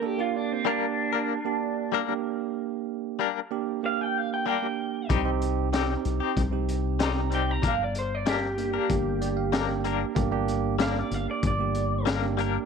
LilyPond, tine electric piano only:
\new Staff \with { instrumentName = "Tine electric piano" } { \time 4/4 \key g \minor \tempo 4 = 95 << { r1 | r1 | r1 | r2 r8 d''16 f''16 g''8 bes''8 |
r1 | } \\ { <bes d' a'>16 <bes d' g'>8. <bes d' g'>4~ <bes d' g'>16 <bes d' g'>4 <bes d' g'>8.~ | <bes d' g'>4 r8 <bes d' g'>8 <bes d' g'>4~ <bes d' g'>16 <bes d' g'>8. | <c' ees' g'>16 <c' ees' g'>8. <c' ees' g'>4~ <c' ees' g'>16 <c' ees' g'>4 <c' ees' g'>8. | r4. <bes d' g'>8 <bes d' g'>4~ <bes d' g'>16 <bes d' g'>8. |
<bes d' g'>16 <bes d' g'>8. <bes g'>4~ <bes g'>16 <bes d' g'>4 <bes d' g'>8. | } >> }